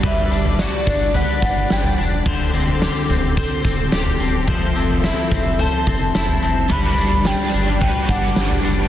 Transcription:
Already playing: G3 D4 F#4 D5 B5 D6
0.03 G1 G3 B4 E5, kick, floor tom
0.31 G1 D4, tambourine
0.45 floor tom
0.59 F#4 D5, snare, tambourine
0.86 G1 D4, kick, floor tom, tambourine
1.14 B4 F#5, floor tom, tambourine
1.42 G1 D4, kick, tambourine
1.70 G1 G5, snare, tambourine
1.84 floor tom
1.98 E1 D4, tambourine
2.26 D1 D3 A4 C5 G5 C6, kick, floor tom
2.53 D1 C4, tambourine
2.68 floor tom
2.82 G4, snare, tambourine
3.09 D1 C4, floor tom, tambourine
3.37 C5, kick, floor tom, tambourine
3.64 D1 C4, kick, tambourine
3.92 D1 G4, snare, tambourine
4.06 floor tom
4.20 D1 C4, tambourine
4.47 F1 F3 C5 E5 E6, kick, floor tom
4.75 F1 C4, tambourine
4.90 floor tom
5.04 E4 E5, snare, tambourine
5.31 F1 C4, kick, floor tom, tambourine
5.59 C5 A5, floor tom, tambourine
5.87 F1 C4, kick, tambourine
6.15 F1 E4 A5, snare, tambourine
6.28 floor tom
6.43 F1 C4, tambourine
6.69 G1 G3 D4 F#4 B4 D5 B5 D6, kick, floor tom
6.98 G1 D4, tambourine
7.11 floor tom
7.25 G3 D4 G5, snare, tambourine
7.29 B4
7.54 G1 D4, tambourine
7.80 G3 D4 B4 G5, kick, floor tom, tambourine
7.85 F#4 B4
8.09 G1 D4 F#5, kick, tambourine
8.36 G1, snare, tambourine
8.50 floor tom
8.64 F#1 D4, tambourine

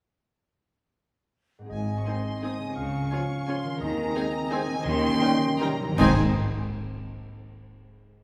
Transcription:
1.59 G#2 C4
1.64 D#4 G#4
1.69 G#1 G#2 C4 D#5 G#5
1.99 C#6
2.05 D#3 C4 D#4 G#4 G#5 C6
2.41 D#3 C4 D#4 G#4 G#5 D#6
2.59 C#3
2.63 C#4
2.68 F4
2.72 G#4 F5
2.76 C#2 C#3 C#4 C#6
3.12 F3 C#4 F4 G#4 G#5
3.47 F3 C#4 F4 G#4 G#5 C6
3.63 D#3
3.68 C4
3.72 D#4
3.77 D#2 D#3 G#4 D#5 A#5
3.81 D#3 C4 G#5
4.15 G#3 C4 D#4 G#4 G#5
4.50 G#3 C4 D#4 G#4 G#5
4.67 D#3
4.72 C#4
4.76 D#4
4.81 D#3 G4
4.85 D#2 D#3 C#4 G5 C6
5.07 D#3
5.15 D#3
5.20 D#3 G3 C#4 D#4 A#4 G5
5.31 D#3
5.39 D#3
5.48 D#3
5.56 D#3 A#4
5.60 G3 C#4 D#4 G5 A#5
5.65 D#3
5.73 D#3
5.81 D#3
5.89 G#2 D#3
5.94 G#1 G#2 G#3 C4 G#4 G#5 C6
5.98 G#2 G#3 C4 D#4 D#5, concert bass drum, crash
6.02 G#4 D#5

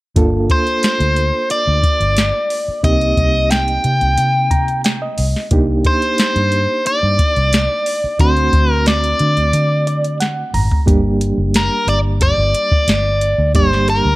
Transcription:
0.16 G1 A#3 D4 F4 A4, kick, closed hi-hat
0.50 C5, kick, closed hi-hat
0.67 closed hi-hat
0.83 snare, closed hi-hat
1.00 D2, closed hi-hat
1.16 closed hi-hat
1.50 D5, closed hi-hat
1.67 D2
1.83 muted fingered electric bass stroke, kick, closed hi-hat
2.00 G1, closed hi-hat
2.17 snare, closed hi-hat
2.50 open hi-hat
2.68 muted fingered electric bass stroke
2.83 C2 A#3 C4 D#4 G4 D#5, kick, closed hi-hat
3.01 closed hi-hat
3.17 C2, kick, closed hi-hat
3.51 G5, snare, closed hi-hat
3.68 closed hi-hat
3.84 C3, closed hi-hat
4.01 C2, closed hi-hat
4.18 C3, closed hi-hat
4.51 A#5, kick, closed hi-hat
4.68 closed hi-hat
4.84 G5, snare, closed hi-hat
5.02 D#5
5.18 C2, open hi-hat
5.36 snare
5.51 C2 A#3 D4 D#4 G4, kick, closed hi-hat
5.85 C5, kick, closed hi-hat
6.02 closed hi-hat
6.18 snare, closed hi-hat
6.36 G2, closed hi-hat
6.52 closed hi-hat
6.86 D5, closed hi-hat
7.03 G2
7.19 muted fingered electric bass stroke, kick, closed hi-hat
7.36 C2, closed hi-hat
7.53 snare, closed hi-hat
7.86 open hi-hat
8.04 muted fingered electric bass stroke
8.19 D2 A3 C4 D4 F#4 C5, kick, closed hi-hat
8.37 closed hi-hat
8.53 D2, kick, closed hi-hat
8.72 A#4
8.86 D5, snare, closed hi-hat
9.04 closed hi-hat
9.19 D3, closed hi-hat
9.37 D2, closed hi-hat
9.53 D3, closed hi-hat
9.87 D5, closed hi-hat
10.04 closed hi-hat
10.20 F#5, snare, closed hi-hat
10.54 G#1 A#5, mid tom, open hi-hat
10.71 floor tom
10.86 G1 G3 A#3 D4 G4, kick, closed hi-hat
11.21 closed hi-hat
11.38 F#1
11.54 A#4, snare, closed hi-hat
11.87 G1 D5, closed hi-hat
12.21 D5, kick, closed hi-hat
12.38 G1
12.55 closed hi-hat
12.72 muted fingered electric bass stroke, kick
12.88 G1, snare, closed hi-hat
13.21 closed hi-hat
13.38 D2
13.54 G1 G3 A#3 D4 G4 C5, kick, closed hi-hat
13.73 snare
13.88 A#4, closed hi-hat
14.05 D2

